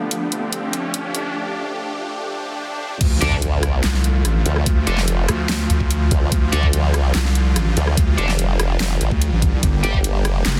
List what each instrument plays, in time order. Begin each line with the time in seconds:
Already playing: supersaw synth F3 A3 D4 G4, ambient pad D4 A4 F5, riser
0.11 closed hi-hat
0.32 closed hi-hat
0.53 closed hi-hat
0.73 closed hi-hat
0.94 closed hi-hat
1.15 closed hi-hat
2.18 swell
3.01 wobble bass D2, supersaw synth D3 F3 A3 F4, kick, closed hi-hat, crash, impact
3.21 wobble bass D2, distorted electric guitar D4 A4 D5, closed hi-hat
3.32 kick
3.42 closed hi-hat
3.63 wobble bass C#2, cross-stick, closed hi-hat
3.84 wobble bass C2, snare, clap, closed hi-hat
3.94 snare
4.04 closed hi-hat
4.25 wobble bass A1, cross-stick, closed hi-hat
4.46 wobble bass D2, closed hi-hat
4.56 cross-stick
4.66 wobble bass D2, kick, closed hi-hat
4.87 wobble bass F1, distorted electric guitar D4 A4 D5, closed hi-hat
4.98 snare
5.08 closed hi-hat
5.29 wobble bass D2, cross-stick, closed hi-hat
5.49 snare, clap, closed hi-hat
5.70 wobble bass D2, closed hi-hat
5.80 kick
5.91 closed hi-hat
6.11 wobble bass D2, kick, closed hi-hat
6.32 wobble bass D2, supersaw synth G3, kick, closed hi-hat
6.52 wobble bass D2, distorted electric guitar D4 A4 D5, closed hi-hat
6.63 kick
6.73 closed hi-hat
6.94 wobble bass C#2, cross-stick, closed hi-hat
7.15 wobble bass C2, snare, clap, closed hi-hat
7.25 snare
7.35 closed hi-hat
7.56 wobble bass A1, cross-stick, closed hi-hat
7.77 wobble bass D2, closed hi-hat
7.87 cross-stick
7.97 wobble bass D2, kick, closed hi-hat
8.18 wobble bass F1, distorted electric guitar D4 A4 D5, closed hi-hat
8.29 snare
8.39 closed hi-hat
8.59 wobble bass F1, cross-stick, closed hi-hat
8.80 snare, clap, closed hi-hat
9.01 wobble bass A1, closed hi-hat
9.11 wobble bass D2, kick
9.22 closed hi-hat
9.32 wobble bass A1
9.42 kick, closed hi-hat
9.53 wobble bass C2
9.63 wobble bass G1, supersaw synth A#3 G4, ambient pad D4, kick, closed hi-hat
9.83 wobble bass G1, distorted electric guitar G4 D5 G5, closed hi-hat
9.94 kick
10.04 closed hi-hat
10.25 wobble bass F#1, cross-stick, closed hi-hat
10.46 wobble bass F1, snare, clap, closed hi-hat
10.56 snare